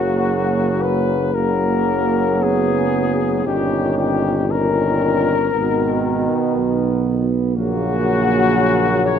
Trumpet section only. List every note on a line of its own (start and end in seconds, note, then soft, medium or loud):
0.00 0.77 F#4 medium
0.81 1.34 B4 medium
1.33 2.40 A#4 medium
2.41 3.46 G#4 medium
3.45 3.96 G4 medium
3.97 4.47 G4 medium
4.49 7.06 A#4 medium
7.56 8.99 F#4 medium
9.03 9.19 C#5 medium